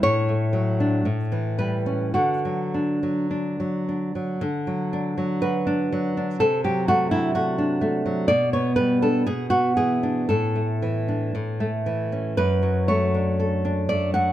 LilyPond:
\new Staff \with { instrumentName = "Nylon-string guitar" } { \time 2/4 \key d \major \tempo 4 = 59 << { cis''4. b'8 | fis'4. r8 | r4 b'4 | a'16 g'16 fis'16 e'16 fis'4 |
d''16 cis''16 b'16 a'16 gis'16 fis'16 gis'8 | a'4 r4 | b'8 cis''4 d''16 fis''16 | } \\ { a,16 a16 fis16 d'16 a,16 e16 g16 cis'16 | d16 fis16 d'16 fis16 d'16 fis16 d'16 fis16 | d16 fis16 d'16 fis16 fis'16 d'16 fis16 d'16 | c16 fis16 a16 d'16 a16 d'16 a16 fis16 |
b,16 b16 g16 d'16 b,16 b16 e16 d'16 | a,16 a16 e16 d'16 a,16 a16 e16 cis'16 | fis,16 fis16 a16 d'16 a'16 d'16 a16 fis16 | } >> }